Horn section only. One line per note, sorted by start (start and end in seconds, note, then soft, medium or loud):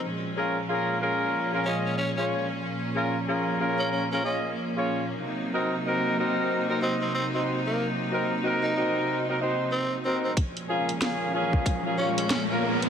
0.37 0.59 C#4 medium
0.37 0.59 F4 medium
0.37 0.59 G#4 medium
0.37 0.59 A#4 loud
0.69 0.98 C#4 medium
0.69 0.98 F4 medium
0.69 0.98 G#4 medium
0.69 0.98 A#4 loud
1.01 1.49 C#4 medium
1.01 1.49 F4 medium
1.01 1.49 G#4 medium
1.01 1.49 A#4 loud
1.53 1.64 C#4 medium
1.53 1.64 F4 medium
1.53 1.64 G#4 medium
1.53 1.64 A#4 medium
1.66 1.97 C#4 medium
1.66 1.97 F4 medium
1.66 1.97 G#4 medium
1.66 1.97 D#5 medium
2.17 2.48 C#4 medium
2.17 2.48 F4 medium
2.17 2.48 G#4 medium
2.17 2.48 C#5 medium
2.95 3.17 C#4 medium
2.95 3.17 F4 medium
2.95 3.17 G#4 medium
2.95 3.17 A#4 loud
3.27 3.56 C#4 medium
3.27 3.56 F4 medium
3.27 3.56 G#4 medium
3.27 3.56 A#4 loud
3.60 4.07 C#4 medium
3.60 4.07 F4 medium
3.60 4.07 G#4 medium
3.60 4.07 A#4 loud
4.11 4.22 C#4 medium
4.11 4.22 F4 medium
4.11 4.22 G#4 medium
4.11 4.22 A#4 loud
4.24 4.55 C#4 medium
4.24 4.55 F4 medium
4.24 4.55 G#4 medium
4.24 4.55 D#5 medium
4.76 5.07 C#4 medium
4.76 5.07 F4 medium
4.76 5.07 G#4 medium
4.76 5.07 C#5 medium
5.53 5.75 C4 medium
5.53 5.75 D#4 medium
5.53 5.75 F#4 medium
5.53 5.75 A#4 loud
5.86 6.14 C4 loud
5.86 6.14 D#4 medium
5.86 6.14 F#4 medium
5.86 6.14 A#4 loud
6.18 6.65 C4 medium
6.18 6.65 D#4 medium
6.18 6.65 F#4 medium
6.18 6.65 A#4 loud
6.69 6.80 C4 medium
6.69 6.80 D#4 medium
6.69 6.80 F#4 medium
6.69 6.80 A#4 loud
6.82 7.13 C4 medium
6.82 7.13 D#4 medium
6.82 7.13 F#4 medium
6.82 7.13 D#5 medium
7.34 7.64 C4 medium
7.34 7.64 D#4 medium
7.34 7.64 F#4 medium
7.34 7.64 C5 medium
8.11 8.33 C4 medium
8.11 8.33 D#4 medium
8.11 8.33 F#4 medium
8.11 8.33 A#4 loud
8.44 8.72 C4 medium
8.44 8.72 D#4 medium
8.44 8.72 F#4 medium
8.44 8.72 A#4 loud
8.76 9.23 C4 loud
8.76 9.23 D#4 medium
8.76 9.23 F#4 medium
8.76 9.23 A#4 loud
9.28 9.38 C4 medium
9.28 9.38 D#4 medium
9.28 9.38 F#4 medium
9.28 9.38 A#4 loud
9.41 9.72 C4 medium
9.41 9.72 D#4 medium
9.41 9.72 F#4 medium
9.41 9.72 C5 medium
10.05 10.36 C4 medium
10.05 10.36 D#4 medium
10.05 10.36 F#4 medium
10.05 10.36 A#4 medium
10.69 10.91 A#3 medium
10.69 10.91 C#4 medium
10.69 10.91 F4 medium
10.69 10.91 G#4 loud
11.01 11.30 A#3 medium
11.01 11.30 C#4 medium
11.01 11.30 F4 medium
11.01 11.30 G#4 loud
11.34 11.81 A#3 loud
11.34 11.81 C#4 medium
11.34 11.81 F4 medium
11.34 11.81 G#4 loud
11.85 11.96 A#3 medium
11.85 11.96 C#4 medium
11.85 11.96 F4 medium
11.85 11.97 G#4 loud
11.99 12.30 A#3 medium
11.99 12.30 C#4 medium
11.99 12.30 F4 medium
11.99 12.30 C#5 medium
12.50 12.81 A#3 medium
12.50 12.81 C#4 medium
12.50 12.81 F4 medium
12.50 12.81 A#4 medium